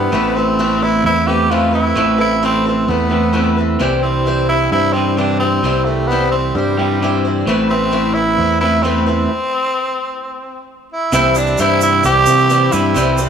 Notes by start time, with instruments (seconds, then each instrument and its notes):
Already playing: clean electric guitar C3 E3 G3 E4 G4, steel-string acoustic guitar G3 C4 E4 C5, tenor saxophone B3
0.12 fingered electric bass A1, steel-string acoustic guitar A2 E3 A3 C4 A4 B4, clean electric guitar B3 E4
0.36 steel-string acoustic guitar A3 C4 A4 B4, tenor saxophone C4
0.59 steel-string acoustic guitar A2 E3 A3 C4 A4 B4
0.82 steel-string acoustic guitar A3 C4 A4 B4, tenor saxophone E4
1.04 fingered electric bass E2, steel-string acoustic guitar A3 C4 A4, tenor saxophone E4
1.08 steel-string acoustic guitar B4
1.27 clean electric guitar A2 E3 B3 E4, steel-string acoustic guitar A3 C4 A4 B4, tenor saxophone G4
1.51 steel-string acoustic guitar A2 E3 A3 C4 A4 B4, clean electric guitar B3 E4, tenor saxophone F4
1.73 steel-string acoustic guitar A3 C4 A4 B4, tenor saxophone E4
1.95 fingered electric bass A1, steel-string acoustic guitar A2 E3 A3 C4 A4 B4, clean electric guitar B3 E4
2.18 steel-string acoustic guitar A3 C4 A4 B4, tenor saxophone E4
2.43 steel-string acoustic guitar A2 E3 A3 C4 A4 B4, tenor saxophone C4
2.66 steel-string acoustic guitar A3 C4 A4 B4, tenor saxophone C4
2.88 fingered electric bass E2, steel-string acoustic guitar A3 C4 A4 B4, tenor saxophone B3
3.09 clean electric guitar E3 B3 E4, steel-string acoustic guitar A3 C4 A4 B4
3.13 clean electric guitar A2
3.33 steel-string acoustic guitar A2 E3 A3 C4 A4 B4, clean electric guitar B3 E4
3.57 steel-string acoustic guitar A3 C4 A4 B4
3.79 fingered electric bass C2, steel-string acoustic guitar C3 E3 G3 C4 E4 C5, clean electric guitar G4
4.02 steel-string acoustic guitar G3 C4 E4 C5, tenor saxophone C4
4.26 steel-string acoustic guitar C3 E3 G3 C4 E4 C5
4.49 steel-string acoustic guitar G3 C4 E4 C5, tenor saxophone E4
4.72 fingered electric bass G2, steel-string acoustic guitar G3 C4 E4 C5, tenor saxophone E4
4.93 clean electric guitar C3 E3 G4, tenor saxophone C4, steel-string acoustic guitar C4 E4 C5
4.97 steel-string acoustic guitar G3
5.17 steel-string acoustic guitar C3 E3 G3 C4 E4 C5, tenor saxophone D4, clean electric guitar G4
5.40 tenor saxophone C4, steel-string acoustic guitar C4 E4 C5
5.44 steel-string acoustic guitar G3
5.63 fingered electric bass C2, steel-string acoustic guitar C3 E3 G3 C4 E4 C5, clean electric guitar G4
5.84 tenor saxophone A3, steel-string acoustic guitar C5
5.89 steel-string acoustic guitar G3 C4 E4
6.07 steel-string acoustic guitar C3, tenor saxophone B3
6.11 steel-string acoustic guitar E3 G3 C4 E4 C5
6.31 steel-string acoustic guitar G3 C4 E4 C5, tenor saxophone C4
6.55 fingered electric bass G2, steel-string acoustic guitar G3 C4 E4 C5, tenor saxophone G3
6.77 clean electric guitar C3 E3 G4, steel-string acoustic guitar C4 E4 C5
6.82 steel-string acoustic guitar G3
7.02 steel-string acoustic guitar C3 E3 G3 C4 E4 C5, clean electric guitar G4
7.25 steel-string acoustic guitar G3 C4 E4 C5
7.46 fingered electric bass A1, steel-string acoustic guitar A2 E3 A3 C4 E4 B4, clean electric guitar B3
7.69 steel-string acoustic guitar A3 C4 E4 B4, tenor saxophone C4
7.91 steel-string acoustic guitar A2 E3 A3 C4 E4 B4
8.14 steel-string acoustic guitar C4 E4 B4, tenor saxophone E4
8.19 steel-string acoustic guitar A3
8.38 fingered electric bass E2, steel-string acoustic guitar A3 C4 E4 B4
8.60 clean electric guitar A2 E3 B3, steel-string acoustic guitar A3 C4 E4 B4, tenor saxophone E4
8.83 steel-string acoustic guitar A2 E3 A3 C4 E4 B4, clean electric guitar B3, tenor saxophone C4
9.06 steel-string acoustic guitar A3 C4 E4 B4, tenor saxophone C4
10.92 tenor saxophone E4
11.12 fingered electric bass C2, steel-string acoustic guitar C3 E3 G3 C4 E4 C5, tenor saxophone E4, shaker
11.35 steel-string acoustic guitar G3 C4 E4 C5, tenor saxophone D4, shaker
11.47 shaker
11.58 fingered electric bass G2, steel-string acoustic guitar C3 E3 G3 C4 E4 C5, tenor saxophone E4, shaker
11.81 steel-string acoustic guitar G3 C4 E4 C5, tenor saxophone E4, shaker
12.04 fingered electric bass C2, steel-string acoustic guitar G3 C4 E4, tenor saxophone G4, shaker
12.08 steel-string acoustic guitar C5
12.26 fingered electric bass C3, steel-string acoustic guitar C4 E4 C5, shaker
12.31 steel-string acoustic guitar G3
12.38 shaker
12.49 steel-string acoustic guitar C3 E3 G3 C4 E4 C5, shaker
12.72 fingered electric bass G2, clean electric guitar C3 E3, steel-string acoustic guitar G3 C4 E4 C5, tenor saxophone E4, shaker
12.94 fingered electric bass C2, steel-string acoustic guitar C3 E3 G3 C4 E4 C5, shaker
13.18 steel-string acoustic guitar G3 C4 E4 C5, shaker